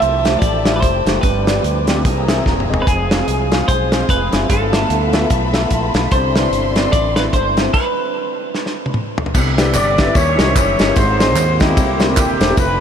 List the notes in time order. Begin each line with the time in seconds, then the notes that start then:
Already playing: F3 A3 E4 G4 E5 G5 A5
0.00 C2 E5, closed hi-hat
0.25 A3 F4 G4 C5, snare, closed hi-hat
0.39 A1 D5, kick, closed hi-hat
0.66 A3 F4 G4 E5, snare, closed hi-hat
0.76 B4
0.81 F1 C5, kick, closed hi-hat
1.06 F#1 A3 F4 G4 E5, snare, closed hi-hat
1.21 G1 G2 C4 D4 B4 D5, kick, closed hi-hat
1.47 C4 F4 G4 D5, snare, closed hi-hat
1.63 D2, closed hi-hat
1.87 C4 F4 G4 D5, snare, closed hi-hat
2.05 C2 C3 E3 A#3 C4 G#4 E5 G#5 A#5, kick, closed hi-hat
2.28 C4 G#4 A#4 E5, snare, closed hi-hat
2.46 D#1, kick, snare
2.60 mid tom
2.69 E1 C4 G#4 A#4 D#5
2.74 floor tom
2.82 B4
2.87 F1 F3 G#3 C4 G#4 F5, kick, closed hi-hat
3.11 C4 F4 G#4 F5, snare, closed hi-hat
3.27 C2, closed hi-hat
3.51 C4 F4 G#4 F5, snare, closed hi-hat
3.68 B1 C5, kick, closed hi-hat
3.92 C4 F4 G#4 F5, snare, closed hi-hat
4.08 F1 B4, kick, closed hi-hat
4.33 F#1 C4 F4 G#4 E5, snare, closed hi-hat
4.49 G1 G2 A3 B3 E4 F4 A4 E5 A5 B5, kick, closed hi-hat
4.72 B3 F4 A4 E5, snare, closed hi-hat
4.90 D2, closed hi-hat
5.13 B3 F4 A4 E5, snare, closed hi-hat
5.30 B1, kick, closed hi-hat
5.54 B3 F4 A4 E5, snare, closed hi-hat
5.71 A#1 E5 A5, kick, closed hi-hat
5.94 B1 F5 B5, snare, closed hi-hat
6.11 C2 C3 D3 C4 D4 E4 C5 D5 E5 C6, kick, closed hi-hat
6.36 C4 E4 B4 D5, snare, closed hi-hat
6.51 G1, closed hi-hat
6.76 C4 E4 B4 D5, snare, closed hi-hat
6.92 A1 D5, kick, closed hi-hat
7.16 C4 E4 B4 D5, snare, closed hi-hat
7.33 G1 C5, kick, closed hi-hat
7.57 C4 E4 B4 E5, snare, closed hi-hat
7.74 B4, kick, crash
8.55 snare
8.66 snare
8.86 high tom
8.94 mid tom
9.18 floor tom
9.26 floor tom
9.34 C2 C3 D3 B3 C4 E5, kick, crash, tambourine
9.58 C4 E4 G4 B4 D5, snare, ride, tambourine
9.74 G1 G4 B4 D5, clap, ride, tambourine
9.98 C4 E4 G4 B4 E5, kick, snare, ride, tambourine
10.07 C4 E4 G4 B4 E5
10.14 D#2 D#3 G3 C#4 E4 G4 C#5, kick, ride, tambourine
10.38 C2 C#4 E4 G4 A#4 D#5, snare, ride, tambourine
10.46 C#4 E4 G4 A#4 C5
10.55 F#1 E4 G4 C#5, kick, clap, ride, tambourine
10.79 G1 C#4 E4 G4 A#4 D#5, snare, ride, tambourine
10.87 C#4 E4 G4 A#4 E5
10.96 G#1 G#2 G#3 C4 D#4 F4 C5, kick, ride, tambourine
11.20 C4 D#4 F4 G#4 D#5, snare, ride, tambourine
11.35 D#2, clap, ride, tambourine
11.60 A#3 C4 D#4 E4 F4 G4 G#4 D#5, kick, snare, ride, tambourine
11.68 C4 D#4 F4 G#4 D#5
11.77 C2 C3 D3 A#3 E4, kick, ride, tambourine
11.99 A#3 D4 E4 G4 C5, snare, ride, tambourine
12.08 A#3 D4 E4 G4 D5
12.17 D#1 A#3 E4 G4, kick, clap, ride, tambourine
12.41 E1 A#3 D4 E4 G4 C5, snare, ride, tambourine
12.50 A#3 D4 E4 G4 C5
12.57 F1 A3 C4 D4 F4 B4, kick, ride, tambourine